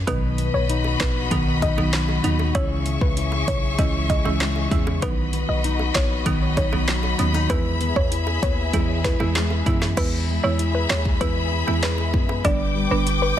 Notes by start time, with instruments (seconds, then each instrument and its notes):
0.07 808-style bass B1, nylon-string guitar B2, marimba D#3 F#3 B3 D#4, string section F#4 D#5 B5, synth pluck B4, kick, closed hi-hat, high bongo
0.38 nylon-string guitar B3, closed hi-hat
0.54 808-style bass B1, synth pluck C#5
0.69 nylon-string guitar D#4, closed hi-hat
0.84 high bongo
1.00 808-style bass A#1, nylon-string guitar B3, synth pluck B4, kick, snare, clap, closed hi-hat, low bongo
1.31 808-style bass B1, marimba D#3 F#3 B3 D#4, nylon-string guitar D#3, kick, closed hi-hat, high bongo
1.62 nylon-string guitar D#4, synth pluck D#5, kick, closed hi-hat, high bongo
1.77 808-style bass B1, marimba D#3 F#3 B3 D#4, high bongo
1.93 nylon-string guitar F#3, cross-stick, snare, clap, closed hi-hat
2.08 high bongo
2.24 808-style bass D#2, marimba D#3 F#3 B3 D#4, nylon-string guitar D#4, closed hi-hat, low bongo
2.39 high bongo
2.55 808-style bass C#2, marimba E3 G#3 C#4 E4, string section G#4 E5 C#6, synth pluck C#5, kick, closed hi-hat, high bongo
2.86 nylon-string guitar C#4, closed hi-hat
3.01 808-style bass C#2, synth pluck B4, kick
3.17 nylon-string guitar E4, closed hi-hat
3.32 high bongo
3.48 808-style bass B1, nylon-string guitar C#4, synth pluck C#5, kick, closed hi-hat, low bongo
3.78 808-style bass C#2, marimba E3 G#3 C#4 E4, nylon-string guitar G#3, synth pluck D#5, kick, closed hi-hat, high bongo
4.10 nylon-string guitar E4, synth pluck D#5, kick, closed hi-hat, high bongo
4.25 808-style bass C#2, marimba E3 G#3 C#4 E4, high bongo
4.40 nylon-string guitar G#3, cross-stick, snare, clap, closed hi-hat
4.56 high bongo
4.71 808-style bass E2, marimba E3 G#3 C#4 E4, nylon-string guitar E4, kick, closed hi-hat, low bongo
4.87 high bongo
5.02 808-style bass B1, marimba D#3 F#3 B3 D#4, string section F#4 D#5 B5, synth pluck B4, kick, closed hi-hat, high bongo
5.33 nylon-string guitar B3, closed hi-hat
5.49 808-style bass B1, synth pluck D#5
5.64 nylon-string guitar D#4, closed hi-hat
5.79 high bongo
5.95 808-style bass A#1, nylon-string guitar B3, synth pluck C#5, kick, snare, clap, closed hi-hat, low bongo
6.26 808-style bass B1, marimba D#3 F#3 B3 D#4, nylon-string guitar D#3, kick, closed hi-hat, high bongo
6.57 nylon-string guitar D#4, synth pluck C#5, kick, closed hi-hat, high bongo
6.72 808-style bass B1, marimba D#3 F#3 B3 D#4, high bongo
6.88 nylon-string guitar F#3, cross-stick, snare, clap, closed hi-hat
7.03 high bongo
7.19 808-style bass D#2, marimba D#3 F#3 B3 D#4, nylon-string guitar C#4, closed hi-hat, low bongo
7.34 nylon-string guitar D#4, high bongo
7.50 808-style bass E2, marimba E3 G#3 B3 E4, string section G#4 E5, synth pluck B4, kick, closed hi-hat, high bongo
7.81 nylon-string guitar B3, closed hi-hat
7.96 808-style bass E2, synth pluck C#5, kick
8.12 nylon-string guitar E4, closed hi-hat
8.27 high bongo
8.43 808-style bass D#2, nylon-string guitar B3, synth pluck C#5, kick, closed hi-hat, low bongo
8.73 808-style bass E2, marimba E3 G#3 B3 E4, nylon-string guitar G#3, kick, closed hi-hat, high bongo
9.04 nylon-string guitar E4, synth pluck B4, kick, snare, closed hi-hat, high bongo
9.20 808-style bass E2, marimba E3 G#3 B3 E4, high bongo
9.35 nylon-string guitar G#3, snare, clap, closed hi-hat
9.50 high bongo
9.66 808-style bass F#2, marimba E3 G#3 B3 E4, nylon-string guitar E4, kick, closed hi-hat, low bongo
9.82 snare, high bongo
9.97 808-style bass E2, marimba E3 G#3 B3 E4, string section G#4 E5 B5, synth pluck B4, kick, closed hi-hat, crash, high bongo
10.28 nylon-string guitar G#3
10.43 808-style bass E2, marimba E3 G#3 B3 E4, synth pluck C#5
10.59 nylon-string guitar E4, closed hi-hat
10.75 synth pluck B4
10.90 808-style bass D#2, nylon-string guitar G#3, synth pluck C#5, snare, clap, low bongo
11.05 kick
11.21 808-style bass E2, marimba E3 G#3 B3 E4, nylon-string guitar B3, synth pluck B4, kick, closed hi-hat, high bongo
11.52 nylon-string guitar E4
11.67 808-style bass E2, marimba E3 G#3 B3 E4, high bongo
11.83 nylon-string guitar G#3, synth pluck B4, cross-stick, snare, clap, closed hi-hat
11.98 high bongo
12.14 808-style bass F#2, nylon-string guitar B3, kick, low bongo
12.29 high bongo
12.44 808-style bass G1, marimba D3 G3 B3 D4, string section B4 G5 D6, synth pluck D5, kick, closed hi-hat, high bongo
12.76 nylon-string guitar G3
12.91 808-style bass G1, marimba D3 G3 B3 D4, synth pluck B4
13.06 nylon-string guitar D4, closed hi-hat
13.22 synth pluck B4